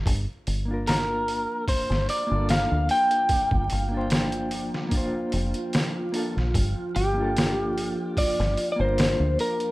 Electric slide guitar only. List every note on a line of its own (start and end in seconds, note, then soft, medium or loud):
0.88 1.64 A#4 medium
1.69 2.09 C5 medium
2.10 2.50 D5 medium
2.50 2.91 F5 loud
2.91 4.08 G5 loud
6.96 8.20 G4 medium
8.18 8.68 D5 loud
8.72 8.79 D5 medium
8.81 9.40 C5 loud
9.41 9.71 A#4 loud